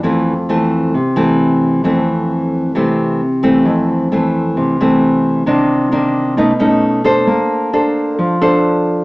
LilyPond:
\new Staff \with { instrumentName = "Nylon-string guitar" } { \time 4/4 \key f \major \tempo 4 = 132 << { <e a c'>8 r8 <e a c'>4 r8 <e a c'>4. | <e a c'>2 <e a c'>4 r8 <e a c'>8~ | <e a c'>4 <e a c'>4. <e a c'>4. | <ees bes d'>4 <ees bes d'>4 <a cis' dis'>8 <a cis' dis'>4 <d' a' c''>8~ |
<d' a' c''>4 <d' a' c''>4. <d' a' c''>4. | } \\ { f,2 c2 | f,2 c2 | f,2 c2 | c2 b,2 |
bes2 f2 | } >> }